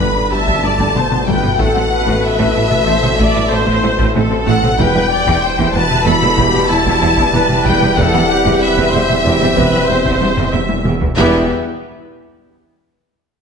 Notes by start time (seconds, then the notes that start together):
Already playing: G1 B2 D3 A3 A4 B4 B5
0.00 G1 G2 G3, taiko
0.16 G2 D4
0.32 G1 G2 G4 E5 A5
0.47 G2 G3, taiko
0.64 G1 G2 D4 D5
0.80 G2 G3, taiko
0.95 G1 G2 B3 C5, taiko mid
1.12 G2 B3, taiko mid
1.28 G1 G2 G3 B4 G5, taiko
1.43 G2 B3, taiko mid
1.59 A1 A2 B2 A3 A4 F#5, taiko
1.75 A2 C4
1.92 B4
2.07 A2 A3, taiko
2.23 E5
2.39 A2 A3, taiko
2.55 A1 A2 E4
2.71 A2 A4, taiko mid
2.87 A1 A2 A3 C5
3.03 A2 C4, taiko mid
3.19 A1 A2 A3 D5, taiko
3.35 A2 E4
3.51 A1 A2 A4 C5
3.67 A2 A3, taiko
3.83 A1 A2 E4
3.99 A2 A3, taiko
4.15 A1 A2 C4 A4, taiko mid
4.31 A2 C4, taiko mid
4.47 A1 A2 A3 F#5, taiko
4.63 A2 C4, taiko mid
4.78 E1 E2 B2 E3 G3 E4 B4 G5, taiko
4.96 E2 G3
5.11 D5
5.27 E2 E3, taiko
5.43 C5
5.59 E2 E3, taiko
5.74 E1 E2 B3 B4 A5
5.91 E2 E4, taiko mid
6.06 E1 E2 E3 A4 B5
6.22 E2 G3, taiko mid
6.38 E1 E2 E3 G4, taiko
6.54 E2 B3
6.69 E1 E2 E4 A5
6.85 E2 E3, taiko
7.02 E1 E2 B3
7.17 E2 E3, taiko
7.33 E1 E2 G3 B4, taiko mid
7.49 E2 G3, taiko mid
7.65 E1 E2 E3 G5, taiko
7.82 E2 G3, taiko mid
7.97 E1 E2 C3 C4 A4 F#5, taiko
8.14 E2 E3, taiko rim
8.29 G4
8.46 E2 C3, taiko
8.61 B4 E5
8.78 E2 C3, taiko
8.93 E1 E2 G3 C5
9.10 E2 C4, taiko mid
9.25 E1 E2 C3 G4
9.41 E2 E3, taiko mid
9.57 E1 E2 C3 B4, taiko
9.74 E2 G3
9.89 E1 E2 C4 C5
10.05 E2 C3, taiko
10.21 E1 E2 G3
10.37 E2 C3, taiko low-mid
10.53 E1 E2 E3 E5, taiko low-mid
10.69 E2 E3, taiko high
10.85 E1 E2 C3, taiko mid
11.01 E2 E3, taiko low
11.16 E1 E2 E3 G3 B3 E4 G4 B4 E5, taiko